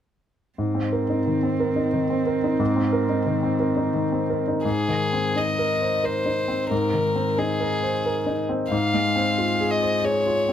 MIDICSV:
0, 0, Header, 1, 4, 480
1, 0, Start_track
1, 0, Key_signature, -4, "major"
1, 0, Tempo, 672646
1, 417, Time_signature, 3, 2, 24, 8
1, 2809, Tempo, 714286
1, 3769, Tempo, 668151
1, 7478, End_track
2, 0, Start_track
2, 0, Title_t, "Violin"
2, 0, Program_c, 0, 40
2, 3288, Note_on_c, 0, 68, 51
2, 3777, Note_on_c, 0, 75, 46
2, 3787, Note_off_c, 0, 68, 0
2, 4254, Note_on_c, 0, 72, 48
2, 4265, Note_off_c, 0, 75, 0
2, 4726, Note_off_c, 0, 72, 0
2, 4731, Note_on_c, 0, 70, 50
2, 5217, Note_on_c, 0, 68, 49
2, 5227, Note_off_c, 0, 70, 0
2, 5935, Note_off_c, 0, 68, 0
2, 6177, Note_on_c, 0, 77, 57
2, 6887, Note_on_c, 0, 75, 53
2, 6897, Note_off_c, 0, 77, 0
2, 7129, Note_on_c, 0, 73, 61
2, 7139, Note_off_c, 0, 75, 0
2, 7478, Note_off_c, 0, 73, 0
2, 7478, End_track
3, 0, Start_track
3, 0, Title_t, "Grand piano"
3, 0, Program_c, 1, 0
3, 417, Note_on_c, 1, 44, 28
3, 533, Note_on_c, 1, 60, 22
3, 556, Control_c, 1, 64, 127
3, 660, Note_on_c, 1, 70, 25
3, 730, Note_off_c, 1, 60, 0
3, 782, Note_on_c, 1, 63, 20
3, 853, Note_off_c, 1, 70, 0
3, 907, Note_on_c, 1, 51, 23
3, 974, Note_off_c, 1, 63, 0
3, 1021, Note_on_c, 1, 60, 25
3, 1095, Note_off_c, 1, 51, 0
3, 1142, Note_on_c, 1, 70, 29
3, 1212, Note_off_c, 1, 60, 0
3, 1257, Note_on_c, 1, 63, 26
3, 1332, Note_off_c, 1, 70, 0
3, 1380, Note_on_c, 1, 51, 27
3, 1449, Note_off_c, 1, 63, 0
3, 1499, Note_on_c, 1, 60, 30
3, 1570, Note_off_c, 1, 51, 0
3, 1616, Note_on_c, 1, 70, 36
3, 1689, Note_off_c, 1, 60, 0
3, 1741, Note_on_c, 1, 63, 33
3, 1806, Note_off_c, 1, 70, 0
3, 1824, Note_off_c, 1, 44, 0
3, 1851, Note_on_c, 1, 44, 44
3, 1867, Control_c, 1, 64, 0
3, 1926, Note_off_c, 1, 63, 0
3, 1972, Note_on_c, 1, 60, 33
3, 1986, Control_c, 1, 64, 127
3, 2088, Note_on_c, 1, 70, 38
3, 2158, Note_off_c, 1, 60, 0
3, 2206, Note_on_c, 1, 63, 28
3, 2276, Note_off_c, 1, 70, 0
3, 2329, Note_on_c, 1, 51, 32
3, 2396, Note_off_c, 1, 63, 0
3, 2446, Note_on_c, 1, 60, 30
3, 2518, Note_off_c, 1, 51, 0
3, 2567, Note_on_c, 1, 70, 35
3, 2638, Note_off_c, 1, 60, 0
3, 2688, Note_on_c, 1, 63, 35
3, 2762, Note_off_c, 1, 70, 0
3, 2810, Note_on_c, 1, 51, 31
3, 2881, Note_off_c, 1, 63, 0
3, 2934, Note_on_c, 1, 60, 27
3, 3000, Note_off_c, 1, 51, 0
3, 3053, Note_on_c, 1, 70, 30
3, 3125, Note_off_c, 1, 60, 0
3, 3174, Note_on_c, 1, 63, 28
3, 3243, Note_off_c, 1, 70, 0
3, 3261, Note_off_c, 1, 44, 0
3, 3287, Note_on_c, 1, 44, 35
3, 3291, Note_off_c, 1, 63, 0
3, 3301, Control_c, 1, 64, 0
3, 3433, Control_c, 1, 64, 127
3, 3446, Note_on_c, 1, 51, 25
3, 3609, Note_on_c, 1, 60, 29
3, 3705, Note_off_c, 1, 51, 0
3, 3765, Note_on_c, 1, 63, 25
3, 3867, Note_off_c, 1, 60, 0
3, 3929, Note_on_c, 1, 70, 32
3, 4028, Note_off_c, 1, 63, 0
3, 4091, Note_on_c, 1, 72, 31
3, 4187, Note_off_c, 1, 70, 0
3, 4253, Note_on_c, 1, 70, 30
3, 4348, Note_off_c, 1, 72, 0
3, 4410, Note_on_c, 1, 63, 27
3, 4508, Note_off_c, 1, 70, 0
3, 4572, Note_on_c, 1, 60, 29
3, 4668, Note_off_c, 1, 63, 0
3, 4705, Note_off_c, 1, 44, 0
3, 4734, Note_on_c, 1, 44, 37
3, 4748, Control_c, 1, 64, 0
3, 4831, Note_off_c, 1, 60, 0
3, 4848, Control_c, 1, 64, 127
3, 4897, Note_on_c, 1, 51, 28
3, 5055, Note_on_c, 1, 60, 30
3, 5154, Note_off_c, 1, 51, 0
3, 5220, Note_on_c, 1, 63, 32
3, 5312, Note_off_c, 1, 60, 0
3, 5378, Note_on_c, 1, 70, 31
3, 5474, Note_off_c, 1, 63, 0
3, 5538, Note_on_c, 1, 72, 33
3, 5633, Note_off_c, 1, 70, 0
3, 5703, Note_on_c, 1, 70, 27
3, 5792, Note_off_c, 1, 72, 0
3, 5853, Note_on_c, 1, 63, 28
3, 5955, Note_off_c, 1, 70, 0
3, 6016, Note_on_c, 1, 60, 31
3, 6110, Note_off_c, 1, 63, 0
3, 6147, Note_off_c, 1, 44, 0
3, 6174, Note_on_c, 1, 44, 40
3, 6176, Note_off_c, 1, 60, 0
3, 6188, Control_c, 1, 64, 0
3, 6322, Control_c, 1, 64, 127
3, 6336, Note_on_c, 1, 56, 28
3, 6494, Note_on_c, 1, 60, 35
3, 6592, Note_off_c, 1, 56, 0
3, 6656, Note_on_c, 1, 65, 32
3, 6749, Note_off_c, 1, 60, 0
3, 6815, Note_on_c, 1, 68, 33
3, 6909, Note_off_c, 1, 65, 0
3, 6974, Note_on_c, 1, 72, 35
3, 7068, Note_off_c, 1, 68, 0
3, 7127, Note_on_c, 1, 68, 34
3, 7227, Note_off_c, 1, 72, 0
3, 7289, Note_on_c, 1, 65, 26
3, 7383, Note_off_c, 1, 68, 0
3, 7448, Note_on_c, 1, 60, 32
3, 7478, Note_off_c, 1, 44, 0
3, 7478, Note_off_c, 1, 60, 0
3, 7478, Note_off_c, 1, 65, 0
3, 7478, End_track
4, 0, Start_track
4, 0, Title_t, "Cello"
4, 0, Program_c, 2, 42
4, 421, Note_on_c, 2, 60, 31
4, 3122, Note_off_c, 2, 60, 0
4, 7478, End_track
0, 0, End_of_file